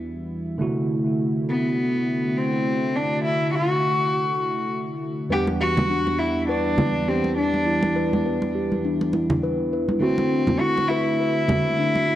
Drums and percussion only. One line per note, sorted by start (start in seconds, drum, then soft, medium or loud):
5.48 muted conga soft
5.77 high conga medium
5.77 low conga medium
6.07 muted conga soft
6.78 high conga medium
6.78 low conga medium
7.24 muted conga soft
7.54 muted conga soft
7.82 muted conga medium
8.13 high conga medium
8.42 muted conga soft
8.72 high conga medium
9.01 muted conga soft
9.13 muted conga soft
9.30 low conga medium
9.89 high conga medium
10.18 muted conga medium
10.47 high conga medium
10.47 low conga medium
10.78 muted conga soft
11.48 high conga medium
11.48 low conga medium
11.95 muted conga soft